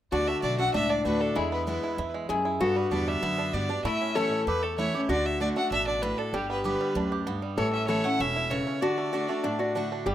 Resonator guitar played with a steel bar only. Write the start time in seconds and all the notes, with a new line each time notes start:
0.12 F#4
0.74 D4
1.36 E4
2.29 G#4
2.61 F#4
3.85 E4
4.15 A4
5.09 F#4
6.34 G4
7.58 A4
7.89 A4
8.82 F#4
9.13 F#4
9.43 D4
9.59 F#4
10.06 G4